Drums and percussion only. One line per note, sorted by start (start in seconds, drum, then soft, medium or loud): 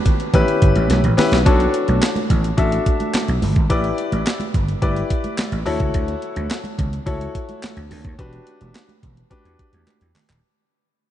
0.05 kick loud
0.05 closed hi-hat medium
0.05 low conga medium
0.20 closed hi-hat medium
0.34 kick loud
0.34 closed hi-hat medium
0.34 muted conga soft
0.34 low conga medium
0.48 closed hi-hat medium
0.62 kick loud
0.62 closed hi-hat medium
0.76 closed hi-hat medium
0.76 high conga medium
0.90 snare medium
0.90 closed hi-hat loud
0.90 muted conga soft
0.90 high conga medium
1.04 closed hi-hat medium
1.04 muted conga soft
1.18 snare loud
1.18 open hi-hat medium
1.18 high conga medium
1.18 low conga medium
1.32 snare loud
1.32 closed hi-hat medium
1.46 kick loud
1.46 closed hi-hat loud
1.60 closed hi-hat medium
1.74 closed hi-hat medium
1.88 closed hi-hat medium
1.88 high conga medium
2.02 snare loud
2.02 clap medium
2.02 closed hi-hat medium
2.16 closed hi-hat soft
2.16 high conga medium
2.30 kick medium
2.30 closed hi-hat medium
2.30 low conga medium
2.44 closed hi-hat medium
2.58 kick loud
2.58 closed hi-hat medium
2.58 high conga medium
2.72 closed hi-hat medium
2.72 muted conga soft
2.86 kick loud
2.86 closed hi-hat medium
3.00 closed hi-hat medium
3.00 high conga medium
3.14 snare loud
3.14 clap medium
3.14 closed hi-hat medium
3.14 high conga loud
3.28 closed hi-hat soft
3.42 open hi-hat medium
3.42 high conga medium
3.42 low conga medium
3.56 kick loud
3.56 closed hi-hat soft
3.70 kick loud
3.70 closed hi-hat loud
3.84 closed hi-hat soft
3.84 muted conga soft
3.98 closed hi-hat medium
4.12 closed hi-hat medium
4.12 high conga medium
4.26 snare loud
4.26 clap medium
4.26 closed hi-hat medium
4.26 muted conga soft
4.40 closed hi-hat medium
4.40 muted conga soft
4.40 high conga medium
4.54 kick medium
4.54 closed hi-hat medium
4.54 low conga medium
4.68 closed hi-hat medium
4.82 kick loud
4.82 closed hi-hat medium
4.82 muted conga soft
4.82 high conga medium
4.96 closed hi-hat medium
5.10 kick loud
5.10 closed hi-hat medium
5.24 closed hi-hat medium
5.24 high conga medium
5.38 snare loud
5.38 clap medium
5.38 closed hi-hat medium
5.38 muted conga soft
5.38 high conga medium
5.52 closed hi-hat medium
5.52 muted conga soft
5.66 open hi-hat medium
5.66 high conga medium
5.66 low conga medium
5.80 kick loud
5.80 closed hi-hat medium
5.94 kick loud
5.94 closed hi-hat medium
5.94 muted conga soft
6.08 closed hi-hat soft
6.08 muted conga soft
6.22 closed hi-hat medium
6.36 closed hi-hat medium
6.36 high conga medium
6.50 snare loud
6.50 clap medium
6.50 closed hi-hat medium
6.64 closed hi-hat soft
6.64 muted conga soft
6.64 high conga medium
6.79 kick medium
6.79 closed hi-hat medium
6.79 low conga medium
6.93 closed hi-hat medium
7.07 kick loud
7.07 closed hi-hat medium
7.07 muted conga soft
7.07 high conga medium
7.21 closed hi-hat medium
7.35 kick medium
7.35 closed hi-hat medium
7.49 closed hi-hat medium
7.49 high conga medium
7.63 snare loud
7.63 clap medium
7.63 closed hi-hat medium
7.63 muted conga soft
7.63 high conga medium
7.77 closed hi-hat medium
7.91 open hi-hat medium
7.91 high conga medium
7.91 low conga medium
8.05 kick loud
8.05 closed hi-hat medium
8.19 kick loud
8.19 closed hi-hat medium
8.33 closed hi-hat soft
8.33 muted conga soft
8.47 closed hi-hat medium
8.61 closed hi-hat medium
8.61 high conga medium
8.75 snare loud
8.75 clap medium
8.75 closed hi-hat medium
8.89 closed hi-hat soft
8.89 high conga medium
9.03 kick medium
9.03 closed hi-hat medium
9.03 low conga medium
9.17 closed hi-hat medium
9.31 kick loud
9.31 closed hi-hat medium
9.31 high conga medium
9.45 closed hi-hat medium
9.59 kick medium
9.59 closed hi-hat medium
9.73 closed hi-hat medium
9.73 high conga medium
9.87 clap medium
9.87 closed hi-hat medium
9.87 high conga medium
10.00 closed hi-hat medium
10.00 muted conga soft
10.15 clap medium
10.15 open hi-hat medium
10.15 high conga medium
10.15 low conga medium
10.29 clap loud
10.29 closed hi-hat soft